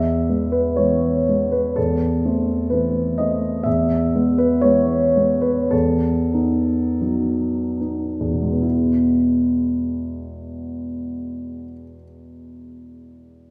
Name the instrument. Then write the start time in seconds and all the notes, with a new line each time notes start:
grand piano
Already playing: E2 E5
0.29 G#3 B3
0.52 B4
0.76 E3 G#3 B3 C#5
1.29 G#3 B3
1.52 B4
1.76 E2 A4
2.25 A3 C4
2.70 E3 A3 C4 B4
3.18 A3 C4 D#5
3.63 E2 E5
4.15 G#3 B3
4.38 B4
4.61 E3 G#3 B3 C#5
5.16 G#3 B3
5.41 B4
5.71 E2 A4
6.33 B3 D#4
7.01 F#3 B3 D#4
7.80 B3 D#4
8.20 E2
8.31 B2
8.42 G#3
8.53 B3
8.62 E4